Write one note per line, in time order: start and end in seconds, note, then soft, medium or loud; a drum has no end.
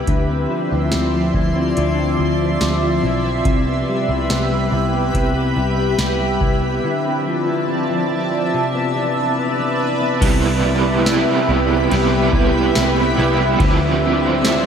0.00 0.16 G3 medium
0.00 0.16 B3 medium
0.07 0.45 D2 medium
0.07 1.76 D3 medium
0.07 3.42 F3 medium
0.07 0.71 E4 soft
0.07 3.42 D5 medium
0.07 6.80 E5 medium
0.07 3.43 C6 medium
0.07 kick loud
0.07 closed hi-hat medium
0.29 0.92 C4 soft
0.50 1.13 F3 medium
0.71 0.91 D2 medium
0.71 1.34 E4 medium
0.92 1.30 D2 medium
0.92 1.55 C4 medium
0.92 snare loud
0.92 closed hi-hat medium
1.14 2.18 F3 medium
1.34 1.72 D2 medium
1.34 1.77 E4 medium
1.34 kick medium
1.56 1.98 C4 medium
1.77 2.15 D2 loud
1.77 3.45 D3 medium
1.77 2.40 E4 medium
1.77 closed hi-hat medium
1.98 2.61 C4 medium
2.19 2.56 D2 medium
2.19 2.81 F3 medium
2.40 3.03 E4 medium
2.61 2.99 D2 medium
2.61 3.24 C4 medium
2.61 snare medium
2.61 closed hi-hat medium
2.82 3.54 F3 medium
3.03 3.41 B1 medium
3.03 3.46 E4 medium
3.25 3.66 C4 medium
3.45 3.83 C2 medium
3.45 5.13 C3 medium
3.45 4.09 E4 medium
3.45 6.81 G4 medium
3.45 6.81 B4 medium
3.45 6.81 B5 medium
3.45 kick loud
3.45 closed hi-hat medium
3.67 4.29 B3 medium
3.88 4.50 G3 medium
4.09 4.28 C2 medium
4.09 4.72 E4 medium
4.30 4.67 C2 loud
4.30 4.92 B3 medium
4.30 snare loud
4.30 closed hi-hat medium
4.52 5.56 G3 medium
4.72 5.10 C2 medium
4.72 5.14 E4 medium
4.93 5.34 B3 medium
5.14 5.52 C2 medium
5.14 6.83 C3 medium
5.14 5.77 E4 medium
5.14 kick medium
5.14 closed hi-hat medium
5.35 5.97 B3 medium
5.56 5.94 C2 medium
5.56 6.19 G3 medium
5.77 6.40 E4 medium
5.98 6.36 C2 medium
5.98 6.61 B3 medium
5.98 snare medium
5.98 closed hi-hat medium
6.20 6.92 G3 medium
6.40 6.78 C2 medium
6.40 6.84 E4 medium
6.40 kick medium
6.62 6.92 B3 soft
6.83 8.53 D3 medium
6.83 8.51 F3 medium
6.83 7.46 E4 medium
6.83 8.51 D5 medium
6.83 10.18 E5 medium
6.83 10.18 A5 medium
7.05 7.68 C4 medium
7.26 7.88 F3 medium
7.47 8.10 E4 medium
7.68 8.32 C4 medium
7.89 8.61 F3 medium
8.10 8.54 E4 medium
8.32 8.74 C4 medium
8.52 10.21 C3 medium
8.52 9.16 D4 medium
8.52 10.20 B4 medium
8.52 10.20 D5 medium
8.74 9.38 B3 medium
8.96 9.59 E3 medium
9.17 9.79 D4 medium
9.38 10.01 B3 medium
9.59 11.91 E3 medium
9.80 10.31 D4 medium
10.01 10.64 B3 soft
10.20 11.24 C2 loud
10.20 11.04 C3 medium
10.20 13.60 C3 medium
10.20 11.06 G3 medium
10.20 11.07 B3 loud
10.20 11.09 E4 loud
10.20 13.56 G4 medium
10.20 13.56 B4 medium
10.20 14.66 E5 medium
10.20 13.56 B5 medium
10.20 kick loud
10.20 crash loud
10.20 ride medium
10.64 11.48 B3 medium
11.05 11.89 C3 medium
11.05 11.90 G3 medium
11.05 11.91 B3 medium
11.05 12.33 E4 medium
11.05 snare loud
11.05 ride medium
11.05 tambourine medium
11.10 11.93 E4 medium
11.49 11.86 C2 medium
11.49 12.75 B3 medium
11.90 12.29 C2 loud
11.90 13.18 C3 medium
11.90 13.69 G3 medium
11.90 13.18 G3 medium
11.90 13.18 B3 loud
11.90 13.17 E4 medium
11.90 ride medium
12.33 12.70 C2 loud
12.33 13.18 E4 medium
12.33 kick medium
12.75 13.13 C2 loud
12.75 13.69 B3 medium
12.75 snare loud
12.75 ride medium
12.75 tambourine medium
13.17 13.55 C2 medium
13.17 13.61 B3 medium
13.17 13.60 E4 medium
13.17 14.45 E4 medium
13.21 13.61 G3 soft
13.59 14.62 D2 loud
13.59 14.66 D3 medium
13.59 14.66 F3 medium
13.59 14.66 D5 medium
13.59 14.66 C6 medium
13.59 kick loud
13.59 ride medium
13.63 14.66 C4 medium
13.63 14.66 E4 loud
14.03 14.66 C4 medium
14.45 14.66 E4 medium
14.45 snare loud
14.45 ride medium
14.45 tambourine medium